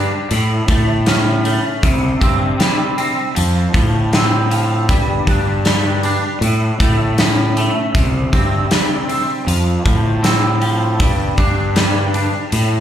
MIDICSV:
0, 0, Header, 1, 4, 480
1, 0, Start_track
1, 0, Tempo, 763359
1, 1152, Time_signature, 4, 2, 24, 8
1, 8049, End_track
2, 0, Start_track
2, 0, Title_t, "Clean electric guitar"
2, 0, Program_c, 0, 27
2, 0, Note_on_c, 0, 55, 70
2, 0, Note_on_c, 0, 62, 61
2, 191, Note_off_c, 0, 62, 0
2, 193, Note_off_c, 0, 55, 0
2, 194, Note_on_c, 0, 45, 70
2, 431, Note_on_c, 0, 57, 61
2, 670, Note_on_c, 0, 61, 66
2, 904, Note_off_c, 0, 57, 0
2, 912, Note_on_c, 0, 57, 66
2, 1147, Note_off_c, 0, 45, 0
2, 1150, Note_on_c, 0, 48, 69
2, 1151, Note_off_c, 0, 61, 0
2, 1152, Note_off_c, 0, 57, 0
2, 1389, Note_on_c, 0, 60, 69
2, 1632, Note_on_c, 0, 55, 65
2, 1864, Note_off_c, 0, 60, 0
2, 1872, Note_on_c, 0, 60, 62
2, 2108, Note_off_c, 0, 55, 0
2, 2110, Note_off_c, 0, 48, 0
2, 2111, Note_on_c, 0, 53, 68
2, 2112, Note_off_c, 0, 60, 0
2, 2345, Note_off_c, 0, 53, 0
2, 2353, Note_on_c, 0, 53, 60
2, 2598, Note_on_c, 0, 60, 65
2, 2826, Note_off_c, 0, 53, 0
2, 2834, Note_on_c, 0, 53, 62
2, 3072, Note_off_c, 0, 53, 0
2, 3074, Note_off_c, 0, 60, 0
2, 3077, Note_on_c, 0, 55, 68
2, 3317, Note_on_c, 0, 62, 67
2, 3549, Note_off_c, 0, 55, 0
2, 3557, Note_on_c, 0, 55, 66
2, 3792, Note_off_c, 0, 62, 0
2, 3799, Note_on_c, 0, 62, 61
2, 4033, Note_off_c, 0, 55, 0
2, 4035, Note_off_c, 0, 62, 0
2, 4041, Note_on_c, 0, 45, 71
2, 4278, Note_on_c, 0, 57, 63
2, 4519, Note_on_c, 0, 61, 66
2, 4752, Note_off_c, 0, 57, 0
2, 4759, Note_on_c, 0, 57, 64
2, 4994, Note_off_c, 0, 61, 0
2, 4995, Note_off_c, 0, 45, 0
2, 4995, Note_off_c, 0, 57, 0
2, 4998, Note_on_c, 0, 48, 68
2, 5241, Note_on_c, 0, 60, 62
2, 5480, Note_on_c, 0, 55, 65
2, 5707, Note_off_c, 0, 60, 0
2, 5714, Note_on_c, 0, 60, 60
2, 5952, Note_off_c, 0, 60, 0
2, 5953, Note_off_c, 0, 55, 0
2, 5954, Note_off_c, 0, 48, 0
2, 5955, Note_on_c, 0, 53, 71
2, 6187, Note_off_c, 0, 53, 0
2, 6194, Note_on_c, 0, 53, 59
2, 6431, Note_on_c, 0, 60, 66
2, 6667, Note_off_c, 0, 53, 0
2, 6675, Note_on_c, 0, 53, 69
2, 6911, Note_off_c, 0, 60, 0
2, 6913, Note_off_c, 0, 53, 0
2, 6915, Note_on_c, 0, 55, 64
2, 7156, Note_on_c, 0, 62, 66
2, 7386, Note_off_c, 0, 55, 0
2, 7393, Note_on_c, 0, 55, 68
2, 7630, Note_off_c, 0, 62, 0
2, 7637, Note_on_c, 0, 62, 62
2, 7873, Note_off_c, 0, 55, 0
2, 7875, Note_off_c, 0, 62, 0
2, 7877, Note_on_c, 0, 45, 73
2, 8049, Note_off_c, 0, 45, 0
2, 8049, End_track
3, 0, Start_track
3, 0, Title_t, "Fingered electric bass"
3, 0, Program_c, 1, 33
3, 195, Note_on_c, 1, 45, 92
3, 379, Note_off_c, 1, 45, 0
3, 433, Note_on_c, 1, 45, 78
3, 989, Note_off_c, 1, 45, 0
3, 1155, Note_on_c, 1, 36, 85
3, 1339, Note_off_c, 1, 36, 0
3, 1395, Note_on_c, 1, 43, 85
3, 1579, Note_off_c, 1, 43, 0
3, 2121, Note_on_c, 1, 41, 87
3, 2302, Note_off_c, 1, 41, 0
3, 2355, Note_on_c, 1, 45, 79
3, 3077, Note_off_c, 1, 45, 0
3, 3077, Note_on_c, 1, 43, 85
3, 3260, Note_off_c, 1, 43, 0
3, 3315, Note_on_c, 1, 43, 81
3, 3869, Note_off_c, 1, 43, 0
3, 4032, Note_on_c, 1, 45, 95
3, 4216, Note_off_c, 1, 45, 0
3, 4279, Note_on_c, 1, 45, 80
3, 4831, Note_off_c, 1, 45, 0
3, 4998, Note_on_c, 1, 36, 84
3, 5180, Note_off_c, 1, 36, 0
3, 5237, Note_on_c, 1, 43, 84
3, 5420, Note_off_c, 1, 43, 0
3, 5956, Note_on_c, 1, 41, 80
3, 6139, Note_off_c, 1, 41, 0
3, 6198, Note_on_c, 1, 45, 76
3, 6917, Note_off_c, 1, 45, 0
3, 6917, Note_on_c, 1, 43, 82
3, 7100, Note_off_c, 1, 43, 0
3, 7157, Note_on_c, 1, 43, 79
3, 7711, Note_off_c, 1, 43, 0
3, 7876, Note_on_c, 1, 45, 88
3, 8049, Note_off_c, 1, 45, 0
3, 8049, End_track
4, 0, Start_track
4, 0, Title_t, "Drums"
4, 193, Note_on_c, 9, 46, 64
4, 256, Note_off_c, 9, 46, 0
4, 429, Note_on_c, 9, 46, 49
4, 430, Note_on_c, 9, 36, 81
4, 491, Note_off_c, 9, 46, 0
4, 493, Note_off_c, 9, 36, 0
4, 669, Note_on_c, 9, 46, 65
4, 673, Note_on_c, 9, 38, 93
4, 732, Note_off_c, 9, 46, 0
4, 736, Note_off_c, 9, 38, 0
4, 913, Note_on_c, 9, 46, 50
4, 976, Note_off_c, 9, 46, 0
4, 1152, Note_on_c, 9, 36, 97
4, 1155, Note_on_c, 9, 46, 67
4, 1215, Note_off_c, 9, 36, 0
4, 1218, Note_off_c, 9, 46, 0
4, 1393, Note_on_c, 9, 36, 75
4, 1396, Note_on_c, 9, 46, 44
4, 1456, Note_off_c, 9, 36, 0
4, 1458, Note_off_c, 9, 46, 0
4, 1634, Note_on_c, 9, 46, 58
4, 1638, Note_on_c, 9, 38, 96
4, 1697, Note_off_c, 9, 46, 0
4, 1701, Note_off_c, 9, 38, 0
4, 1874, Note_on_c, 9, 46, 46
4, 1937, Note_off_c, 9, 46, 0
4, 2115, Note_on_c, 9, 46, 63
4, 2178, Note_off_c, 9, 46, 0
4, 2353, Note_on_c, 9, 36, 79
4, 2354, Note_on_c, 9, 46, 46
4, 2416, Note_off_c, 9, 36, 0
4, 2417, Note_off_c, 9, 46, 0
4, 2596, Note_on_c, 9, 46, 57
4, 2600, Note_on_c, 9, 38, 100
4, 2659, Note_off_c, 9, 46, 0
4, 2663, Note_off_c, 9, 38, 0
4, 2838, Note_on_c, 9, 46, 46
4, 2901, Note_off_c, 9, 46, 0
4, 3075, Note_on_c, 9, 36, 104
4, 3075, Note_on_c, 9, 46, 60
4, 3138, Note_off_c, 9, 36, 0
4, 3138, Note_off_c, 9, 46, 0
4, 3315, Note_on_c, 9, 36, 75
4, 3316, Note_on_c, 9, 46, 45
4, 3378, Note_off_c, 9, 36, 0
4, 3379, Note_off_c, 9, 46, 0
4, 3553, Note_on_c, 9, 46, 63
4, 3557, Note_on_c, 9, 38, 99
4, 3616, Note_off_c, 9, 46, 0
4, 3620, Note_off_c, 9, 38, 0
4, 3794, Note_on_c, 9, 46, 49
4, 3857, Note_off_c, 9, 46, 0
4, 4037, Note_on_c, 9, 46, 68
4, 4100, Note_off_c, 9, 46, 0
4, 4276, Note_on_c, 9, 36, 82
4, 4278, Note_on_c, 9, 46, 50
4, 4339, Note_off_c, 9, 36, 0
4, 4340, Note_off_c, 9, 46, 0
4, 4515, Note_on_c, 9, 46, 66
4, 4519, Note_on_c, 9, 38, 103
4, 4578, Note_off_c, 9, 46, 0
4, 4582, Note_off_c, 9, 38, 0
4, 4759, Note_on_c, 9, 46, 50
4, 4822, Note_off_c, 9, 46, 0
4, 4998, Note_on_c, 9, 36, 102
4, 5000, Note_on_c, 9, 46, 62
4, 5060, Note_off_c, 9, 36, 0
4, 5063, Note_off_c, 9, 46, 0
4, 5237, Note_on_c, 9, 36, 76
4, 5239, Note_on_c, 9, 46, 47
4, 5300, Note_off_c, 9, 36, 0
4, 5302, Note_off_c, 9, 46, 0
4, 5476, Note_on_c, 9, 46, 66
4, 5480, Note_on_c, 9, 38, 101
4, 5539, Note_off_c, 9, 46, 0
4, 5543, Note_off_c, 9, 38, 0
4, 5718, Note_on_c, 9, 46, 45
4, 5781, Note_off_c, 9, 46, 0
4, 5962, Note_on_c, 9, 46, 63
4, 6025, Note_off_c, 9, 46, 0
4, 6197, Note_on_c, 9, 36, 83
4, 6197, Note_on_c, 9, 46, 47
4, 6260, Note_off_c, 9, 36, 0
4, 6260, Note_off_c, 9, 46, 0
4, 6439, Note_on_c, 9, 46, 61
4, 6443, Note_on_c, 9, 38, 92
4, 6502, Note_off_c, 9, 46, 0
4, 6505, Note_off_c, 9, 38, 0
4, 6675, Note_on_c, 9, 46, 44
4, 6738, Note_off_c, 9, 46, 0
4, 6916, Note_on_c, 9, 36, 107
4, 6916, Note_on_c, 9, 46, 61
4, 6979, Note_off_c, 9, 36, 0
4, 6979, Note_off_c, 9, 46, 0
4, 7154, Note_on_c, 9, 46, 43
4, 7155, Note_on_c, 9, 36, 77
4, 7216, Note_off_c, 9, 46, 0
4, 7218, Note_off_c, 9, 36, 0
4, 7394, Note_on_c, 9, 46, 66
4, 7398, Note_on_c, 9, 38, 104
4, 7457, Note_off_c, 9, 46, 0
4, 7461, Note_off_c, 9, 38, 0
4, 7635, Note_on_c, 9, 46, 49
4, 7698, Note_off_c, 9, 46, 0
4, 7874, Note_on_c, 9, 46, 65
4, 7937, Note_off_c, 9, 46, 0
4, 8049, End_track
0, 0, End_of_file